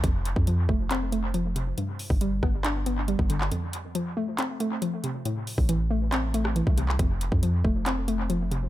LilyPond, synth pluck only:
\new Staff \with { instrumentName = "Synth pluck" } { \clef bass \time 4/4 \key f \lydian \tempo 4 = 138 f,4 f8 a8 c'8 a8 f8 c8 | g,4 g8 b8 d'8 b8 g8 d8 | f,4 f8 a8 c'8 a8 f8 c8 | a,4 e8 a8 c'8 a8 e8 c8 |
f,4 f8 a8 c'8 a8 f8 c8 | }